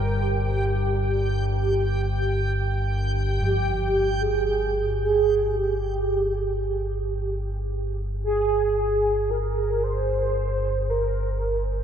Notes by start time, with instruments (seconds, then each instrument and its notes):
Already playing: synth drone G1 G2, kettle gongs A#2, soft synth lead A#4, synth texture G5
0.22 soft synth lead G4
1.31 soft synth lead G4
3.42 synth drone G1 G2, kettle gongs F3, soft synth lead G4
4.21 soft synth lead G#4
5.03 soft synth lead G#4
5.57 soft synth lead G4
8.24 soft synth lead G#4
9.30 soft synth lead A#4
9.83 soft synth lead C5
10.89 soft synth lead A#4